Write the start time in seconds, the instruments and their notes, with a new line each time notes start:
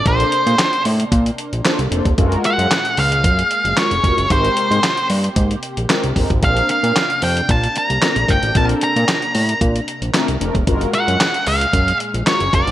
Already playing: analog synth pad C3 D4
0.05 analog synth bass A#1, analog polysynth A#3 D4 A4 C5, analog synth pad A#3, lead electric guitar C5, kick, closed hi-hat
0.20 closed hi-hat
0.32 closed hi-hat
0.47 analog synth bass A#2, closed hi-hat
0.59 snare, clap, closed hi-hat
0.73 closed hi-hat
0.85 analog synth bass A2, open hi-hat
1.00 closed hi-hat
1.12 analog synth bass A#2, kick, closed hi-hat
1.26 closed hi-hat
1.38 closed hi-hat
1.53 analog synth bass A#1, closed hi-hat
1.65 analog polysynth A#3 D4 A4 C5, snare, clap, closed hi-hat
1.79 analog synth bass C2, closed hi-hat
1.91 analog synth bass F1, analog polysynth A#3 D4 A4 C5, closed hi-hat
2.05 analog synth bass D#1, kick, closed hi-hat
2.17 analog synth bass F#1, analog synth pad A#2 G#3 G#4, analog polysynth G#3 F4 F#4 A4, kick, closed hi-hat
2.25 analog polysynth A#4
2.32 closed hi-hat
2.44 lead electric guitar F#5, closed hi-hat
2.58 analog synth bass F#2, closed hi-hat
2.71 snare, clap, closed hi-hat
2.85 closed hi-hat
2.97 analog synth bass C#2, lead electric guitar F5, open hi-hat
3.12 closed hi-hat
3.24 analog synth bass F#2, kick, closed hi-hat
3.39 closed hi-hat
3.51 closed hi-hat
3.65 analog synth bass F#1, closed hi-hat
3.77 analog polysynth G#3 F4 F#4 A#4, lead electric guitar C#5, snare, clap, closed hi-hat
3.91 analog synth bass F1, closed hi-hat
4.04 analog synth bass F1, analog polysynth G#3 F4 F#4 A#4, kick, closed hi-hat
4.18 analog synth bass F#1, closed hi-hat
4.30 analog synth bass G#1, analog synth pad C3 A#3 G4, analog polysynth G#3 C4 G4 A#4, lead electric guitar C5, kick, closed hi-hat
4.45 closed hi-hat
4.57 closed hi-hat
4.71 analog synth bass G#2, closed hi-hat
4.83 snare, clap, closed hi-hat
4.97 closed hi-hat
5.10 analog synth bass G2, open hi-hat
5.24 closed hi-hat
5.36 analog synth bass G#2, kick, closed hi-hat
5.51 closed hi-hat
5.63 closed hi-hat
5.77 analog synth bass A#1, closed hi-hat
5.89 analog polysynth G#3 C4 G4 A#4, snare, clap, closed hi-hat
6.04 analog synth bass C2, closed hi-hat
6.16 analog synth bass G1, analog polysynth G#3 C4 G4 A#4, kick, open hi-hat
6.30 analog synth bass G#1, kick, closed hi-hat
6.42 analog synth bass A#1, analog synth pad A#3 D4, analog polysynth C4 D4 A4, lead electric guitar F5, kick, closed hi-hat
6.49 analog polysynth A#4
6.57 closed hi-hat
6.69 lead electric guitar F5, closed hi-hat
6.83 analog synth bass A#2, closed hi-hat
6.96 snare, clap, closed hi-hat
7.10 closed hi-hat
7.22 analog synth bass F2, lead electric guitar G5, open hi-hat
7.37 closed hi-hat
7.49 analog synth bass A#2, lead electric guitar A5, kick, closed hi-hat
7.64 closed hi-hat
7.76 lead electric guitar A#5, closed hi-hat
7.90 analog synth bass C2, closed hi-hat
8.02 analog polysynth A3 C4 D4 A#4, snare, clap, closed hi-hat
8.16 analog synth bass A#1, closed hi-hat
8.28 analog synth bass G1, analog polysynth A3 C4 D4 A#4, lead electric guitar G5, kick, closed hi-hat
8.43 analog synth bass A1, closed hi-hat
8.55 analog synth bass A#1, analog polysynth C4 D4 A4 A#4, lead electric guitar A5, kick, closed hi-hat
8.69 closed hi-hat
8.81 lead electric guitar A#5, closed hi-hat
8.96 analog synth bass A#2, closed hi-hat
9.08 snare, clap, closed hi-hat
9.22 closed hi-hat
9.35 analog synth bass A2, open hi-hat
9.49 closed hi-hat
9.61 analog synth bass A#2, kick, closed hi-hat
9.76 closed hi-hat
9.88 closed hi-hat
10.02 analog synth bass A#1, closed hi-hat
10.14 analog polysynth A3 C4 D4 A#4, snare, clap, closed hi-hat
10.28 analog synth bass C2, closed hi-hat
10.40 analog synth bass F1, analog polysynth A3 C4 D4 A#4, closed hi-hat
10.55 analog synth bass D#1, kick, closed hi-hat
10.67 analog synth bass F#1, analog synth pad A#2 G#3 G#4, analog polysynth G#3 F4 F#4 A#4, kick, closed hi-hat
10.81 closed hi-hat
10.93 lead electric guitar F#5, closed hi-hat
11.08 analog synth bass F#2, closed hi-hat
11.20 snare, clap, closed hi-hat
11.34 closed hi-hat
11.47 analog synth bass C#2, lead electric guitar F5, open hi-hat
11.61 closed hi-hat
11.73 analog synth bass F#2, kick, closed hi-hat
11.88 closed hi-hat
12.00 closed hi-hat
12.14 analog synth bass A#1, closed hi-hat
12.26 analog polysynth G#3 F4 F#4 A#4, lead electric guitar C#5, snare, clap, closed hi-hat
12.40 analog synth bass F#1, closed hi-hat
12.53 analog synth bass F#1, analog polysynth G#3 F4 F#4 A#4, lead electric guitar D5, kick, closed hi-hat
12.67 analog synth bass G#1, closed hi-hat